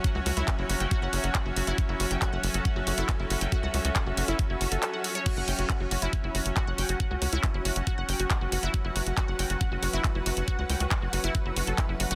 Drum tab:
CC |----------------|----------------|----------------|x---------------|
HH |x-oxx-oxx-oxx-ox|x-oxx-oxx-oxx-ox|x-oxx-oxx-oxx-ox|x-oxx-oxx-oxx-ox|
CP |----x-------x---|----x-------x---|----x-------x---|----x-------x---|
BD |o---o---o---o---|o---o---o---o---|o---o---o-------|o---o---o---o---|

CC |----------------|----------------|----------------|
HH |x-oxx-oxx-oxx-ox|x-oxx-oxx-oxx-ox|x-oxx-oxx-oxx-ox|
CP |----x-------x---|----x-------x---|----x-------x---|
BD |o---o---o---o---|o---o---o---o---|o---o---o---o---|